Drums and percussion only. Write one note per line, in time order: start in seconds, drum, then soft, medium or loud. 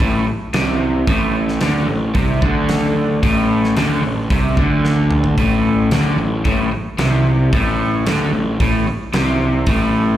0.00 kick loud
0.00 open hi-hat soft
0.54 snare loud
0.54 open hi-hat medium
1.07 kick loud
1.07 open hi-hat medium
1.48 snare soft
1.61 snare loud
1.61 open hi-hat soft
2.15 kick medium
2.15 open hi-hat soft
2.42 kick loud
2.69 snare loud
2.69 open hi-hat soft
3.23 kick loud
3.23 open hi-hat medium
3.64 snare soft
3.77 snare loud
3.77 open hi-hat medium
4.30 kick medium
4.30 open hi-hat soft
4.57 kick loud
4.85 snare medium
5.11 mid tom medium
5.24 floor tom medium
5.38 kick loud
5.38 open hi-hat soft
5.91 snare loud
5.91 open hi-hat soft
6.45 kick loud
6.45 open hi-hat soft
6.99 snare loud
6.99 open hi-hat soft
7.53 kick loud
7.53 open hi-hat soft
8.07 snare loud
8.07 open hi-hat medium
8.60 kick loud
8.60 open hi-hat medium
9.13 snare loud
9.13 open hi-hat soft
9.67 kick loud
9.67 open hi-hat medium